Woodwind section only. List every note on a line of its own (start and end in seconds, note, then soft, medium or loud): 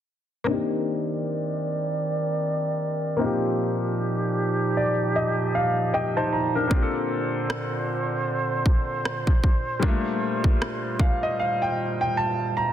0.48 3.18 D#3 medium
0.48 3.18 C4 medium
0.48 3.18 A#4 medium
0.48 3.18 D5 medium
3.20 12.73 A#2 medium
3.20 6.67 F3 medium
3.20 6.67 D#4 medium
3.20 6.67 G4 medium
6.70 9.66 D3 medium
6.70 9.66 C4 medium
6.70 12.73 C5 medium
9.83 12.73 G3 medium
9.83 12.73 F4 medium